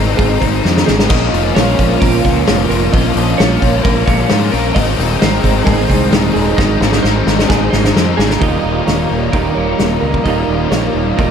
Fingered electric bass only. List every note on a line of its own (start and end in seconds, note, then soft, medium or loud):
0.00 0.14 G#1 loud
0.19 0.37 G#1 medium
0.42 0.60 G#1 medium
0.65 0.83 F2 medium
0.89 1.06 G#1 loud
1.10 1.28 A#1 medium
1.33 1.51 F1 medium
1.56 1.74 A#1 loud
1.79 1.97 A#1 medium
2.02 2.20 A#1 medium
2.25 2.43 C#2 medium
2.48 2.66 F1 loud
2.69 2.88 F1 medium
2.93 3.11 A#1 medium
3.15 3.33 A#1 loud
3.40 3.57 A#1 medium
3.62 3.80 A#1 medium
3.85 4.03 A#1 medium
4.07 4.25 A#1 medium
4.31 4.49 G#2 medium
4.53 4.71 A#1 medium
4.76 4.94 G#1 loud
4.99 5.16 D#1 medium
5.22 5.40 G#1 loud
5.44 5.62 G#1 medium
5.67 5.85 G#1 loud
5.90 6.08 C2 medium
6.12 6.30 D#1 medium
6.36 6.53 D#1 loud
6.58 6.76 G#1 medium
6.80 6.99 G#1 loud
7.04 7.22 G#1 loud
7.26 7.45 G#1 loud
7.50 7.68 G#1 loud
7.73 7.91 G#1 medium
7.95 8.14 F2 medium
8.18 8.36 G#1 medium
8.42 8.58 D#1 medium
8.64 8.80 D#1 medium
8.88 9.04 D#1 medium
9.11 9.27 D#1 medium
9.33 9.50 D#1 medium
9.56 9.72 D#1 medium
9.79 9.96 D#1 medium
10.02 10.19 C#2 medium
10.26 10.42 D#1 medium
10.48 10.65 D#1 medium
10.71 10.88 A#1 medium
10.94 11.11 D#1 medium
11.18 11.31 D#1 medium